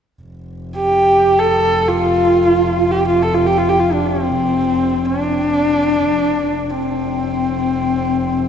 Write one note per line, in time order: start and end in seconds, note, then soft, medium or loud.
0.22 6.08 F1 medium
0.77 1.41 G4 medium
1.39 1.90 A4 medium
1.88 2.92 F4 medium
2.91 3.07 G4 medium
3.08 3.24 F4 medium
3.22 3.36 A4 medium
3.35 3.48 F4 medium
3.46 3.60 G4 medium
3.58 3.70 F4 medium
3.69 3.81 G4 medium
3.80 3.94 F4 medium
3.93 4.08 D4 medium
4.06 5.07 C4 medium
5.05 6.71 D4 medium
6.09 8.48 F1 medium
6.70 8.48 C4 medium